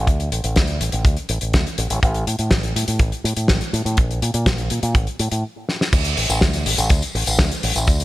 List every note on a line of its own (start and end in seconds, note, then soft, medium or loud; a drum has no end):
0.07 0.29 D2 loud
0.07 kick loud
0.07 closed hi-hat medium
0.20 closed hi-hat soft
0.32 0.42 A1 medium
0.32 closed hi-hat medium
0.44 0.55 A1 medium
0.44 closed hi-hat medium
0.56 0.78 D2 medium
0.56 kick loud
0.56 snare loud
0.56 closed hi-hat medium
0.67 closed hi-hat soft
0.81 0.91 A1 medium
0.81 closed hi-hat medium
0.92 1.03 A1 medium
0.92 closed hi-hat medium
1.05 1.15 D2 loud
1.05 kick loud
1.05 closed hi-hat medium
1.17 closed hi-hat soft
1.29 1.40 A1 loud
1.29 closed hi-hat medium
1.41 1.52 A1 medium
1.41 closed hi-hat medium
1.54 1.64 D2 medium
1.54 kick loud
1.54 snare loud
1.54 closed hi-hat medium
1.67 closed hi-hat soft
1.78 1.89 A1 medium
1.78 closed hi-hat medium
1.90 2.01 A1 loud
1.90 closed hi-hat medium
2.03 2.24 A1 loud
2.03 kick loud
2.03 closed hi-hat medium
2.14 closed hi-hat soft
2.27 2.38 A2 medium
2.27 closed hi-hat medium
2.39 2.50 A2 medium
2.39 closed hi-hat medium
2.51 2.72 A1 medium
2.51 kick medium
2.51 snare loud
2.51 closed hi-hat medium
2.63 closed hi-hat soft
2.76 2.86 A2 medium
2.76 closed hi-hat medium
2.88 2.99 A2 medium
2.88 closed hi-hat medium
2.99 3.10 A1 loud
2.99 kick loud
2.99 closed hi-hat medium
3.12 closed hi-hat soft
3.24 3.35 A2 loud
3.24 closed hi-hat medium
3.37 3.47 A2 medium
3.37 closed hi-hat medium
3.48 3.60 A1 medium
3.48 kick loud
3.48 snare loud
3.48 closed hi-hat medium
3.61 closed hi-hat soft
3.73 3.84 A2 medium
3.73 closed hi-hat medium
3.85 3.96 A2 loud
3.85 closed hi-hat medium
3.97 4.19 A#1 loud
3.97 kick loud
3.97 closed hi-hat medium
4.11 closed hi-hat soft
4.22 4.33 A#2 medium
4.22 closed hi-hat medium
4.34 4.45 A#2 medium
4.34 closed hi-hat medium
4.46 4.68 A#1 medium
4.46 kick loud
4.46 snare loud
4.46 closed hi-hat medium
4.58 closed hi-hat soft
4.70 4.81 A#2 medium
4.70 closed hi-hat medium
4.83 4.94 A#2 medium
4.83 closed hi-hat medium
4.95 5.06 A1 loud
4.95 kick loud
4.95 closed hi-hat medium
5.07 closed hi-hat soft
5.19 5.30 A2 loud
5.19 closed hi-hat medium
5.32 5.42 A2 medium
5.32 closed hi-hat medium
5.69 snare medium
5.81 snare medium
5.93 6.14 D2 loud
5.93 kick loud
5.93 closed hi-hat medium
5.93 tambourine soft
5.93 crash loud
6.04 closed hi-hat medium
6.04 tambourine soft
6.17 6.28 A1 medium
6.17 open hi-hat loud
6.29 6.40 A1 loud
6.29 closed hi-hat medium
6.29 tambourine medium
6.41 6.63 D2 medium
6.41 kick loud
6.41 snare loud
6.41 closed hi-hat medium
6.53 closed hi-hat medium
6.53 tambourine soft
6.66 6.76 A1 medium
6.66 open hi-hat loud
6.78 6.89 A1 loud
6.78 closed hi-hat medium
6.78 tambourine medium
6.90 7.01 D2 medium
6.90 kick loud
6.90 closed hi-hat medium
6.90 tambourine soft
7.02 closed hi-hat medium
7.02 tambourine soft
7.15 7.25 A1 loud
7.15 open hi-hat loud
7.26 7.37 A1 medium
7.26 closed hi-hat medium
7.26 tambourine medium
7.39 7.50 D2 medium
7.39 kick loud
7.39 snare loud
7.39 closed hi-hat medium
7.51 closed hi-hat medium
7.51 tambourine soft
7.63 7.74 A1 loud
7.63 open hi-hat loud
7.75 7.86 A1 loud
7.75 closed hi-hat medium
7.75 tambourine medium
7.87 8.04 D2 loud
7.87 kick loud
7.87 closed hi-hat medium
7.87 tambourine soft
8.00 closed hi-hat medium
8.00 tambourine soft